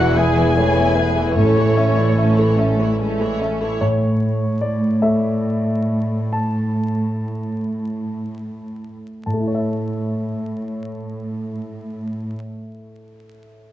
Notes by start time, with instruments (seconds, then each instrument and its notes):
Already playing: double bass section E1, grand piano E2 B3 B4 D5 E5, cello section E2, viola section E3 G#3, french horn section E3 E4, violin section E4 G#4 F#5, clarinet F#4, flute section D5, oboe F#5
0.15 viola section G#3 B3, clarinet G#4, violin section G#4 B4 G#5, grand piano E5, flute section E5, oboe G#5
0.36 viola section E3 G#3, grand piano B3, violin section E4 G#4
0.57 viola section G#3 B3, grand piano A3, violin section G#4 B4, clarinet C#5
0.77 viola section E3 G#3, grand piano B3, violin section E4 G#4
0.96 viola section G#3 B3, violin section G#4 B4, clarinet B4, grand piano E5
1.16 viola section E3 G#3, violin section E4 G#4, grand piano B4
1.36 double bass section A1, cello section A2, grand piano A2, viola section A3 C#4, violin section C#4 A4 C#5, clarinet A4, flute section A4, oboe C#5
1.57 viola section E3 A3, grand piano A3, violin section E4 C#5
1.76 viola section A3 C#4, violin section C#4 A4, grand piano E5
1.96 viola section E3 A3, violin section E4 C#5, grand piano D5
2.16 viola section A3 C#4, violin section C#4 A4, grand piano E5
2.37 viola section E3 A3, violin section E4 C#5, grand piano A4
2.58 viola section A3 C#4, violin section C#4 A4, grand piano E5
2.79 viola section E3 A3, grand piano A3, violin section E4 C#5
2.99 grand piano G#3, viola section A3 C#4, violin section C#4 A4
3.20 viola section E3 A3, grand piano A3, violin section E4 C#5
3.40 viola section A3 C#4, violin section C#4 A4, grand piano E5
3.61 viola section E3 A3, violin section E4 C#5, grand piano A4
3.81 cello section A2, grand piano A2 C#5
4.61 grand piano D5
5.02 grand piano A3 E5
6.33 grand piano A5
9.25 cello section A2, grand piano A2 A5
9.34 grand piano A3
9.40 grand piano E4
9.48 grand piano C#5
9.55 grand piano E5